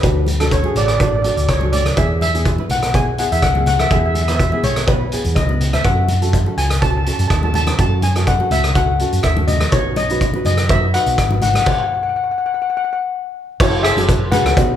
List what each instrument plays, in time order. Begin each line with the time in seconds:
Already playing: steel pan B4
0.03 fingered electric bass D2, nylon-string guitar D4 F#4 A4, kick, closed hi-hat
0.27 closed hi-hat, high conga
0.40 nylon-string guitar D4 F#4 A4, steel pan A4, cross-stick, closed hi-hat
0.51 steel pan C#5, kick, closed hi-hat
0.64 nylon-string guitar D4 F#4 G#4, high conga
0.76 fingered electric bass A1, steel pan D5, closed hi-hat, low conga
0.86 steel pan D5, cross-stick, closed hi-hat
0.94 steel pan D5
1.00 nylon-string guitar D4 F#4 A4, steel pan D5, kick, closed hi-hat
1.08 steel pan D5
1.16 steel pan D5
1.22 nylon-string guitar D4 F#4 A4, steel pan D5, closed hi-hat
1.28 steel pan D5
1.37 fingered electric bass D2, steel pan D5, closed hi-hat
1.49 fingered electric bass C#2, steel pan C#5, kick, cross-stick, closed hi-hat
1.61 nylon-string guitar D4 F#4 A4, high conga
1.72 steel pan D5, closed hi-hat, low conga
1.86 cross-stick, closed hi-hat, high conga
1.97 fingered electric bass E2, nylon-string guitar B3 E4 G#4, steel pan E5, kick, closed hi-hat
2.21 steel pan E5, closed hi-hat, high conga
2.34 nylon-string guitar B3 E4 G#4, closed hi-hat
2.45 kick, closed hi-hat
2.58 nylon-string guitar B3 E4 B4, high conga
2.70 fingered electric bass B1, steel pan F#5, closed hi-hat, low conga
2.83 cross-stick, closed hi-hat
2.94 nylon-string guitar B3 E4 G#4, steel pan G#5, kick, closed hi-hat
3.18 nylon-string guitar B3 E4 G#4, steel pan F#5, closed hi-hat
3.31 fingered electric bass E2, steel pan E5, closed hi-hat
3.42 fingered electric bass C#2, steel pan F#5, kick, cross-stick, closed hi-hat
3.55 nylon-string guitar B3 E4 G#4, high conga
3.66 steel pan F#5, closed hi-hat, low conga
3.79 steel pan E5, cross-stick, closed hi-hat, high conga
3.90 fingered electric bass E2, nylon-string guitar B3 E4 G#4, steel pan E5, kick, closed hi-hat
3.99 steel pan E5
4.06 steel pan E5
4.15 steel pan E5, closed hi-hat, high conga
4.22 steel pan E5
4.28 nylon-string guitar B3 E4 B4, steel pan E5, cross-stick, closed hi-hat
4.36 steel pan E5, kick, closed hi-hat
4.44 steel pan E5
4.52 nylon-string guitar B3 E4 G#4, steel pan E5, high conga
4.63 fingered electric bass B1, steel pan C#5, closed hi-hat, low conga
4.76 cross-stick, closed hi-hat
4.87 nylon-string guitar B3 E4 B4, steel pan B4, kick, closed hi-hat, high conga
5.12 nylon-string guitar B3 E4 G#4, closed hi-hat
5.25 fingered electric bass E2, closed hi-hat, high conga
5.35 fingered electric bass C#2, steel pan D#5, kick, cross-stick, closed hi-hat, high conga
5.49 nylon-string guitar B3 E4 B4, high conga
5.61 closed hi-hat, low conga
5.73 steel pan E5, cross-stick, closed hi-hat, low conga
5.84 fingered electric bass F#2, nylon-string guitar C#4 F#4 A4, steel pan F#5, kick, closed hi-hat
6.08 closed hi-hat, high conga
6.22 nylon-string guitar C#4 F#4 A4, closed hi-hat
6.33 kick, closed hi-hat
6.46 nylon-string guitar C#4 F#4 A4, high conga
6.57 fingered electric bass C#2, steel pan G#5, closed hi-hat
6.70 cross-stick, closed hi-hat
6.82 nylon-string guitar C#4 F#4 A4, steel pan A5, kick, closed hi-hat
6.91 steel pan A5
6.98 steel pan A5
7.05 nylon-string guitar C#4 F#4 A4, steel pan A5, closed hi-hat
7.13 steel pan A5
7.19 fingered electric bass F#2, steel pan A5, closed hi-hat
7.28 fingered electric bass D#2, steel pan A5, kick, cross-stick, closed hi-hat
7.36 steel pan A5
7.43 nylon-string guitar C#4 F#4 A4, steel pan A5, high conga
7.54 steel pan A5, closed hi-hat, low conga
7.67 cross-stick, closed hi-hat, high conga
7.79 fingered electric bass F#2, nylon-string guitar C#4 F#4 A4, steel pan A5, kick, closed hi-hat
8.02 steel pan G#5, closed hi-hat, high conga
8.16 nylon-string guitar C#4 F#4 A4, cross-stick, closed hi-hat
8.27 steel pan F#5, kick, closed hi-hat
8.40 nylon-string guitar C#4 F#4 A4, high conga
8.51 fingered electric bass C#2, steel pan E5, closed hi-hat, low conga
8.64 cross-stick, closed hi-hat
8.75 nylon-string guitar C#4 F#4 A4, steel pan F#5, kick, closed hi-hat
8.99 nylon-string guitar C#4 F#4 A4, closed hi-hat
9.12 fingered electric bass F#2, closed hi-hat
9.23 fingered electric bass D#2, steel pan E5, kick, cross-stick, closed hi-hat
9.37 nylon-string guitar C#4 F#4 A4, high conga
9.47 steel pan D#5, closed hi-hat, low conga
9.61 cross-stick, closed hi-hat, high conga
9.72 fingered electric bass B1, nylon-string guitar D#4 F#4 B4, steel pan C#5, kick, closed hi-hat
9.96 steel pan D#5, closed hi-hat, high conga
10.10 nylon-string guitar D#4 F#4 B4, closed hi-hat
10.21 kick, closed hi-hat
10.34 nylon-string guitar D#4 F#4 B4, high conga
10.45 fingered electric bass F#2, steel pan D#5, closed hi-hat, low conga
10.57 cross-stick, closed hi-hat
10.69 nylon-string guitar D#4 F#4 B4, steel pan E5, kick, closed hi-hat
10.94 nylon-string guitar D#4 F#4 B4, steel pan F#5, closed hi-hat
11.06 fingered electric bass B1, closed hi-hat
11.18 fingered electric bass G#1, kick, cross-stick, closed hi-hat
11.31 nylon-string guitar D#4 F#4 B4, high conga
11.42 steel pan F#5, closed hi-hat, low conga
11.50 steel pan F#5
11.54 cross-stick, closed hi-hat, high conga
11.58 steel pan F#5
11.65 steel pan F#5, kick, crash
11.72 steel pan F#5
11.80 steel pan F#5
11.87 steel pan F#5
11.94 steel pan F#5
12.03 steel pan F#5
12.09 steel pan F#5
12.16 steel pan F#5
12.24 steel pan F#5
12.31 steel pan F#5
12.38 steel pan F#5
12.46 steel pan F#5
12.54 steel pan F#5
12.62 steel pan F#5
12.70 steel pan F#5
12.77 steel pan F#5
12.85 steel pan F#5
12.93 steel pan F#5
13.60 fingered electric bass F#1, nylon-string guitar C#4 F#4 A4, steel pan E4 C#5, kick, crash
13.83 steel pan G#4 E5, cross-stick, closed hi-hat
13.96 fingered electric bass F#1, nylon-string guitar C#4 F#4 A4, closed hi-hat, high conga
14.09 kick, closed hi-hat
14.32 nylon-string guitar C#4 F#4 G#4, steel pan B4 F#5, closed hi-hat, high conga, low conga
14.45 fingered electric bass C#2, cross-stick, closed hi-hat
14.56 fingered electric bass B1, nylon-string guitar B3 D#4 F#4, kick, closed hi-hat